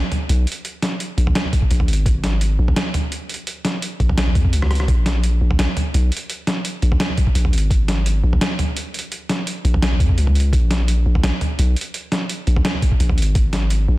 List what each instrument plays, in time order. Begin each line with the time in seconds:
0.12 closed hi-hat, mid tom
0.29 808-style bass B1, closed hi-hat
0.47 closed hi-hat
0.52 closed hi-hat
0.65 closed hi-hat
0.82 snare, closed hi-hat
1.00 closed hi-hat
1.18 808-style bass A#1, closed hi-hat
1.27 mid tom
1.35 snare, closed hi-hat
1.45 mid tom
1.53 kick, closed hi-hat
1.62 kick
1.71 808-style bass A#1, closed hi-hat
1.80 mid tom
1.88 808-style bass G#1, closed hi-hat
1.93 closed hi-hat
2.06 kick, closed hi-hat
2.24 snare, closed hi-hat
2.41 closed hi-hat
2.59 808-style bass A#1
2.68 mid tom
2.76 snare, closed hi-hat
2.94 closed hi-hat, mid tom
3.12 closed hi-hat
3.29 closed hi-hat
3.34 closed hi-hat
3.47 closed hi-hat
3.65 snare, closed hi-hat
3.82 closed hi-hat
4.00 808-style bass A#1, kick, closed hi-hat
4.09 mid tom
4.18 snare, closed hi-hat
4.27 mid tom
4.35 808-style bass F2, kick, closed hi-hat
4.45 kick
4.53 808-style bass C#2, closed hi-hat
4.62 cross-stick, mid tom
4.71 cross-stick, closed hi-hat
4.75 closed hi-hat
4.80 cross-stick
4.88 808-style bass A#1, kick, closed hi-hat
5.06 snare, closed hi-hat
5.24 closed hi-hat
5.41 808-style bass A#1
5.51 mid tom
5.59 808-style bass A#1, snare, closed hi-hat
5.77 closed hi-hat, mid tom
5.94 808-style bass B1, closed hi-hat
6.12 closed hi-hat
6.17 closed hi-hat
6.30 closed hi-hat
6.47 snare, closed hi-hat
6.65 closed hi-hat
6.82 808-style bass A#1, closed hi-hat
6.92 mid tom
7.00 snare, closed hi-hat
7.09 mid tom
7.17 kick, closed hi-hat
7.27 kick
7.35 808-style bass A#1, closed hi-hat
7.45 mid tom
7.53 808-style bass G#1, closed hi-hat
7.58 closed hi-hat
7.70 kick, closed hi-hat
7.88 snare, closed hi-hat
8.06 closed hi-hat
8.24 808-style bass A#1
8.33 mid tom
8.41 snare, closed hi-hat
8.59 closed hi-hat, mid tom
8.77 closed hi-hat
8.94 closed hi-hat
8.99 closed hi-hat
9.12 closed hi-hat
9.29 snare, closed hi-hat
9.47 closed hi-hat
9.65 808-style bass A#1, closed hi-hat
9.74 mid tom
9.82 snare, closed hi-hat
9.92 mid tom
10.00 808-style bass F2, kick, closed hi-hat
10.09 kick
10.17 808-style bass C#2, closed hi-hat
10.27 mid tom
10.35 closed hi-hat
10.40 closed hi-hat
10.53 808-style bass A#1, kick, closed hi-hat
10.71 snare, closed hi-hat
10.88 closed hi-hat
11.06 808-style bass A#1
11.15 mid tom
11.24 808-style bass A#1, snare, closed hi-hat
11.41 closed hi-hat, mid tom
11.59 808-style bass B1, closed hi-hat
11.76 closed hi-hat
11.81 closed hi-hat
11.94 closed hi-hat
12.12 snare, closed hi-hat
12.29 closed hi-hat
12.47 808-style bass A#1, closed hi-hat
12.56 mid tom
12.65 snare, closed hi-hat
12.74 mid tom
12.82 kick, closed hi-hat
12.92 kick
13.00 808-style bass A#1, closed hi-hat
13.09 mid tom
13.18 808-style bass G#1, closed hi-hat
13.22 closed hi-hat
13.35 kick, closed hi-hat
13.53 snare, closed hi-hat
13.70 closed hi-hat
13.88 808-style bass A#1